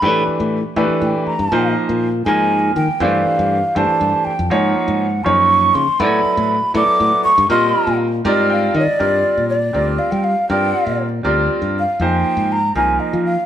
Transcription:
<<
  \new Staff \with { instrumentName = "Flute" } { \time 6/8 \key g \phrygian \tempo 4. = 80 b''8 r4. g''8 bes''8~ | bes''8 r4 aes''4 g''8 | f''4. a''4 g''8 | ges''4. des'''4 c'''8 |
b''4. d'''4 cis'''8 | c'''4. ees''8 f''8 d''8~ | d''4 d''4 f''16 g''16 f''8 | g''4 r4. f''8 |
g''4 bes''8 aes''8 ees''8 f''8 | }
  \new Staff \with { instrumentName = "Grand piano" } { \time 6/8 \key g \phrygian << { r2. | r2. | r2. | r2. |
r2. | r2 g''8 ees''8 | r2. | r2. |
r2. | } \\ { <e a d' g' b'>4 r8 <e a d' g' b'>4 r8 | <f bes ees' aes' c''>4 r8 <f bes ees' aes' bes'>4 r8 | <e a d' g' c''>4 r8 <e a d' g' c''>4 r8 | <f bes ees' aes' des''>4 r8 <f bes ees' aes' des''>4 r8 |
<fis b e' a' d''>4 r8 <fis b e' a' d''>4 r8 | <g c' f' bes' ees''>4 r8 <g c' f' bes' d''>4 r8 | <g c' f' bes' d''>4 r8 <g c' f' bes' d''>4 r8 | <g c' f' bes' d''>4 r8 <g c' f' bes' d''>4 r8 |
<f bes ees' aes' c''>4 r8 <f bes ees' aes' bes'>4 r8 | } >> }
  \new Staff \with { instrumentName = "Fingered electric bass" } { \clef bass \time 6/8 \key g \phrygian a,8 r16 a,8 r16 a,16 r16 a,16 r8 g,16 | bes,8 r16 bes,8. aes,4 ees16 r16 | g,8 r16 g,8 r16 g,16 r16 g,16 r8 f,16 | aes,8 r16 aes,8. ges,4 des16 r16 |
a,8 r16 a,8 r16 a,16 r16 a,16 r8 g,16 | bes,8 r16 bes,8. aes,4 ees16 r16 | g,8 r16 bes,8. d,8 r16 g8 r16 | g,8 r16 bes,8. d,8 r16 g,8 r16 |
f,8 r16 aes,8. c,8 r16 f8 r16 | }
>>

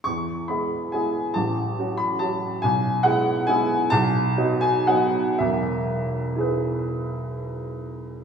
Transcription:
<<
  \new Staff \with { instrumentName = "Upright piano" } { \time 3/4 \key e \major \tempo 4 = 134 << { cis'''4 b''4 gis''4 | a''4. b''8 a''4 | gis''4 fis''4 gis''4 | a''4. gis''8 fis''4 |
e''2.~ | e''2. | } \\ { r2. | r2. | r2. | r2. |
r2 <e' gis' b'>4~ | <e' gis' b'>2. | } >> }
  \new Staff \with { instrumentName = "Upright piano" } { \time 3/4 \key e \major e,4 <gis b e'>4 <gis b e'>4 | a,,4 <fis cis' fis'>4 <fis cis' fis'>4 | b,,4 <gis b e'>4 <gis b e'>4 | b,,4 <fis b dis'>4 <fis b dis'>4 |
<e,, b,,>2.~ | <e,, b,,>2. | }
>>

